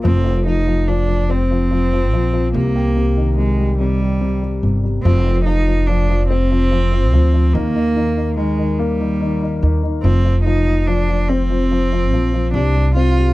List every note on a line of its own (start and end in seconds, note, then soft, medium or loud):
0.04 2.13 F1 loud
0.04 0.23 F3 medium
0.04 0.43 C4 medium
0.25 0.45 F3 medium
0.46 0.66 F3 medium
0.46 0.89 D#4 medium
0.67 0.87 F3 soft
0.88 1.07 F3 medium
0.88 1.32 D4 medium
1.09 1.50 F3 soft
1.30 2.51 C4 medium
1.30 2.53 C4 medium
1.51 1.70 F3 soft
1.71 1.92 F3 medium
1.93 2.12 F3 soft
2.13 2.52 A#1 medium
2.13 2.32 F3 medium
2.33 2.54 F3 medium
2.54 4.59 C2 loud
2.54 2.95 C3 medium
2.54 3.34 A#3 medium
2.76 4.38 G4 medium
2.97 3.37 C3 medium
3.17 4.80 D#3 soft
3.38 3.79 C3 medium
3.38 3.77 G#3 medium
3.59 3.99 G3 medium
3.78 4.20 C3 medium
3.78 4.69 G3 medium
4.01 4.41 G3 soft
4.21 4.62 C3 medium
4.42 4.82 G3 medium
4.63 5.02 G1 medium
4.63 5.04 C3 medium
4.84 5.04 G3 medium
5.03 7.13 F1 loud
5.03 5.25 F3 medium
5.03 5.42 C4 loud
5.26 5.45 F3 soft
5.45 5.67 F3 medium
5.45 5.88 D#4 loud
5.68 5.88 F3 soft
5.87 6.08 F3 medium
5.87 6.28 D4 medium
6.10 6.50 F3 medium
6.28 7.55 C4 loud
6.28 7.51 C4 medium
6.51 6.70 F3 medium
6.71 6.91 F3 medium
6.92 7.12 F3 soft
7.13 7.52 D2 loud
7.13 7.32 F3 medium
7.34 7.54 F3 medium
7.53 9.59 D#2 loud
7.53 7.74 D#3 medium
7.53 8.37 A#3 loud
7.75 7.95 D#3 soft
7.96 8.15 D#3 medium
8.17 8.36 D#3 soft
8.37 8.57 D#3 medium
8.37 8.80 G#3 medium
8.59 8.99 D#3 soft
8.78 9.72 G3 medium
8.78 10.00 A#3 medium
9.01 9.20 D#3 medium
9.21 9.41 D#3 medium
9.43 9.61 D#3 soft
9.63 10.02 D#2 medium
9.63 9.82 D#3 medium
9.83 10.03 D#3 soft
10.03 12.13 F1 loud
10.03 10.23 F3 medium
10.03 10.42 C4 loud
10.25 10.45 F3 soft
10.44 10.66 F3 medium
10.44 10.88 D#4 loud
10.67 10.86 F3 soft
10.87 11.08 F3 medium
10.87 11.31 D4 loud
11.09 11.49 F3 soft
11.29 12.53 C4 loud
11.29 12.50 C4 medium
11.50 11.70 F3 soft
11.71 11.91 F3 medium
11.93 12.12 F3 medium
12.13 12.52 A#1 medium
12.13 12.32 F3 medium
12.34 12.54 F3 medium
12.54 13.34 C2 loud
12.54 13.34 C3 medium
12.54 12.93 D4 loud
12.76 13.16 G3 medium
12.95 13.34 C4 medium
12.95 13.34 F4 loud
13.18 13.34 G3 medium